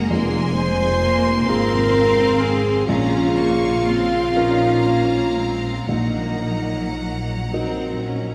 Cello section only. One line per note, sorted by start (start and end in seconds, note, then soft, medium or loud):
0.09 0.54 A#3 medium
0.54 1.01 G#3 medium
1.01 1.46 A#3 medium
1.48 2.88 C4 loud
2.88 3.36 C#4 medium
3.37 3.86 A#3 medium
3.86 4.36 C4 medium
4.36 4.86 C#4 medium
4.86 5.37 A#3 medium
5.36 5.89 G#3 medium
5.89 8.28 F#3 medium